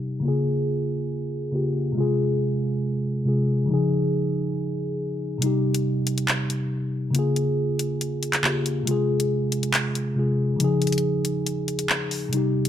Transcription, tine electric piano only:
0.00 0.19 C3 medium
0.00 0.20 G3 medium
0.00 0.21 D#4 medium
0.00 0.23 G4 medium
0.20 1.49 C#3 medium
0.20 1.50 A#3 medium
0.25 1.52 F4 medium
0.25 1.53 G#4 medium
1.52 1.96 C#3 medium
1.52 1.96 A#3 medium
1.52 1.96 F4 medium
1.56 1.98 G4 medium
1.92 3.21 C3 medium
1.92 3.23 G#3 medium
1.98 3.24 F4 medium
1.98 3.26 G#4 medium
3.25 3.69 C3 medium
3.25 3.69 G#3 medium
3.25 3.70 F4 medium
3.29 3.71 G#4 medium
3.65 5.36 C#3 medium
3.65 5.38 F3 medium
3.71 5.39 D#4 medium
3.71 5.41 G#4 medium
5.38 7.09 C3 medium
5.38 7.11 G3 medium
5.43 7.12 D#4 medium
5.43 7.13 G4 medium
7.11 8.39 C#3 medium
7.11 8.41 A#3 medium
7.16 8.42 F4 medium
7.16 8.44 G#4 medium
8.42 8.86 C#3 medium
8.42 8.87 A#3 medium
8.42 8.87 F4 medium
8.46 8.88 G4 medium
8.83 10.12 C3 medium
8.83 10.13 G#3 medium
8.88 10.15 F4 medium
8.88 10.16 G#4 medium
10.15 10.59 C3 medium
10.15 10.60 G#3 medium
10.15 10.61 F4 medium
10.19 10.61 G#4 medium
10.56 12.27 C#3 medium
10.56 12.29 F3 medium
10.61 12.30 D#4 medium
10.61 12.31 G#4 medium
12.29 12.69 C3 medium
12.29 12.69 G3 medium
12.34 12.69 D#4 medium
12.34 12.69 G4 medium

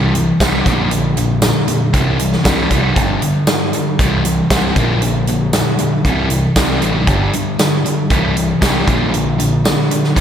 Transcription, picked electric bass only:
0.00 0.31 C2 medium
0.41 0.61 C2 loud
0.66 1.50 A#1 medium
1.94 2.36 C2 medium
2.45 2.66 C2 medium
2.71 2.92 C2 medium
2.97 3.17 G1 loud
3.99 4.41 C2 medium
4.51 4.72 C2 medium
4.76 5.60 A#1 medium
6.05 6.47 C2 medium
6.56 6.83 C2 medium
6.83 7.03 A1 medium
7.07 7.29 G1 loud
8.11 8.52 C2 medium
8.62 8.83 C2 loud
8.88 9.71 A#1 medium
10.17 10.21 C2 medium

